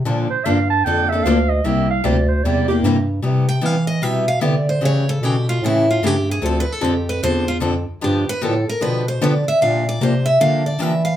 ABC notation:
X:1
M:4/4
L:1/8
Q:"Swing" 1/4=151
K:Cmix
V:1 name="Clarinet"
z c f a g e f _e | e f d c d G z2 | [K:C] z8 | z8 |
z8 | z8 | z8 |]
V:2 name="Steel-string acoustic guitar"
z8 | z8 | [K:C] z g f _e =e f d c | ^c A G F E F G _A |
(3A B A G B c F z2 | G B A _B =B c d e | f d c e f d e f |]
V:3 name="Steel-string acoustic guitar"
[D,F,B,DA] z [D,F,B,DA] z [D,F,B,DA] [B,DA] [D,F,B,DA] z | [C,G,B,EG] z [C,G,B,EG] z [C,G,B,EG] [B,EG] [C,G,B,EG] z | [K:C] [C,G,B,EG] z [C,G,B,EG] z [C,G,B,EG] z [C,G,B,EG] z | [^C,E,A,^CG] z [C,E,A,CG] z [C,E,A,CG] z [C,E,A,CG] z |
[D,F,CDA] z [D,F,CDA] z [D,F,CDA] z [D,F,CDA] z | [D,F,B,DG] z [D,F,B,DG] z [D,F,B,DG] z [D,F,B,DG] z | [D,F,_B,DG] z [D,F,B,DG] z [D,F,B,DG] z [D,F,B,DG] z |]
V:4 name="Bass clarinet" clef=bass
B,, B,, G,,2 F,,2 D,,2 | C,,2 D,,2 E,,2 G,,2 | [K:C] C,2 E,2 B,,2 D,2 | ^C,2 B,,2 A,,2 G,,2 |
D,, z F,,2 E,,2 F,, F,, | G,, G,, A,, A,, B,,2 D, D, | _B,,2 C,2 D,2 E,2 |]